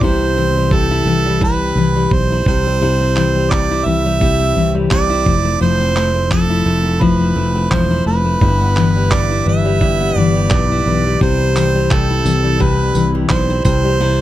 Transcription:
Already playing: E3 G3 B3
0.01 C2 C3 E4 C5, kick
0.37 E3
0.57 G3
0.71 C3 A4, kick
0.91 E4
1.06 C2 E3
1.26 G3
1.41 C3 E4 B4, kick
1.76 C2 E3
1.96 G3
2.11 B1 C5, kick
2.32 E4
2.46 C2 C3 C5, kick
2.67 G3
2.81 C3 E4
3.00 C4
3.16 E3, clap
3.35 G3
3.51 C3 D5, kick, clap
3.71 E4
3.85 C2 E3 E5
4.06 G3
4.21 C3 E4, kick
4.40 C4
4.56 C2 E3
4.75 G3
4.91 C2 C3 D5, kick, clap
5.10 E4
5.26 F1 F3, kick
5.45 A3
5.61 F1 F3 E4 C5
5.80 C4
5.96 A3, clap
6.14 A3
6.31 F3 A4, kick, clap
6.50 E4
6.66 F1 A3
6.85 A3
7.01 F3 E4 B4, kick
7.20 C4
7.36 F1 A3
7.55 A3
7.71 E1 F3 C5, kick, clap
7.90 E4
8.06 F1 A3 B4
8.25 A3
8.41 G1 G2 G3 E4 B4, kick
8.61 B3
8.76 E3, clap
8.96 G3
9.11 G2 D5, kick, clap
9.31 E4
9.46 G1 E3 E5
9.65 G3
9.81 G2 E4, kick
10.00 B3
10.16 G1 E3 D5
10.35 G3
10.50 B1 G2 D5, kick, clap
10.72 E4
10.86 B1 E3
11.06 G3
11.20 C2 C3 G3 C4 E4 C5, kick
11.56 E3, clap, tambourine
11.75 G3
11.91 C3 A4, kick, clap
12.10 E4
12.25 C2 E3, tambourine
12.45 G3
12.60 C3 E4 B4, kick
12.95 C2 E3, tambourine
13.15 G3
13.29 B1 C5, kick, clap
13.50 E4
13.65 C2 C3 G3 C5, kick, tambourine
13.85 G3
14.00 C3 E4

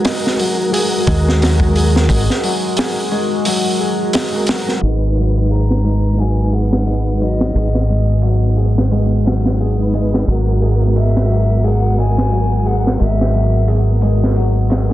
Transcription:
Already playing: F#3 G#3 F#4 G#4 A#4
0.05 G#3, snare, open hi-hat
0.27 snare
0.39 F#3, open hi-hat
0.72 G#3 F#4 G#4, open hi-hat
0.78 A#4
1.07 D#2 G#3, kick, open hi-hat
1.29 snare
1.42 F#3, snare, open hi-hat
1.60 kick
1.76 G#4, open hi-hat
1.96 snare
2.09 G#1 G#3 F#4 A#4, kick, open hi-hat
2.30 snare
2.44 F#3, open hi-hat
2.77 G#4, snare, open hi-hat
3.12 G#3
3.45 F#3, open hi-hat
3.80 G#4
4.13 G#3, snare, open hi-hat
4.33 G#3 F#4 A#4
4.47 F#3, snare, open hi-hat
4.68 snare
4.81 G#1 G#3 B3 D#4 B4, open hi-hat
4.88 B4
5.15 F#3, open hi-hat
5.34 closed hi-hat
5.49 G#4 A#5, open hi-hat
5.70 snare
5.84 G#3, open hi-hat
6.16 F#3 G#3 D#4, open hi-hat
6.20 B4 G#5
6.52 G#4 F#5, open hi-hat
6.72 snare
6.86 G#3, open hi-hat
7.20 F#3 D#5, open hi-hat
7.41 snare
7.54 G#1 G#3 D#4 G#4 B4, open hi-hat
7.75 snare
7.87 G#3, open hi-hat
8.22 F#3, open hi-hat
8.56 G#4, open hi-hat
8.78 snare
8.92 G#3, open hi-hat
9.25 F#3, snare, open hi-hat
9.46 snare
9.60 G#4, open hi-hat
9.79 G#3 D#4 B4
9.93 G#3, open hi-hat
10.14 snare
10.25 G#1 F#3 G#3 F#4 A#4, open hi-hat
10.31 A#4
10.62 G#4, open hi-hat
10.81 closed hi-hat
10.96 G#3 E5, open hi-hat
11.17 snare
11.30 F#3, open hi-hat
11.61 G#3 F#4 G#4, open hi-hat
11.66 A#4 F#5
11.98 G#3 G#5, open hi-hat
12.18 snare
12.31 F#3, open hi-hat
12.66 G#4 F#5, open hi-hat
12.87 snare
12.99 G#1 G#3 F#4 A#4 E5, open hi-hat
13.21 snare
13.33 F#3, open hi-hat
13.68 G#4, open hi-hat
14.01 G#3, open hi-hat
14.24 snare
14.36 F#3, open hi-hat
14.70 G#3, snare, open hi-hat
14.89 G#3

